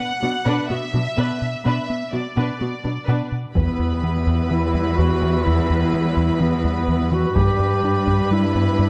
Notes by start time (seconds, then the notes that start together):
Already playing: F#5
0.00 B3
0.22 B2 F#3 B3 D4 F#4
0.46 B2 B3 D4 B4
0.70 B2 B3 F#4 E5
0.94 B2 F#3 D4
1.17 B2 B3 D4 B4
1.42 B2
1.65 B2 B3 D4 B4 E5
1.90 B3
2.12 B2 F#3 B3 D4 F#4 D5
2.37 B2 B3 D4 B4
2.60 B2 B3 F#4
2.84 B2 F#3 D4
3.08 B2 B3 D4 B4
3.32 B2
3.54 E2 E3 G3 B3 E4 B4 B5, taiko
3.79 E2 E4
4.03 E3 B3
4.27 E2 E3
4.51 E3 B3 E4
4.74 E2 G3
4.98 E2 E3 F#4
5.23 E3 B3
5.46 E2 E3 E4
5.70 E2 E4
5.94 E3 B3
6.17 E2 E3
6.40 E3 B3
6.64 E2 G3
6.88 E2 E3
7.12 E3 B3 F#4
7.36 G2 G3 D4 G4 B4 B5, taiko
7.59 G2 G4
7.83 G3 D4
8.07 G2 G3, taiko
8.31 G3 D4 E4
8.55 G2 B3
8.79 G2 G3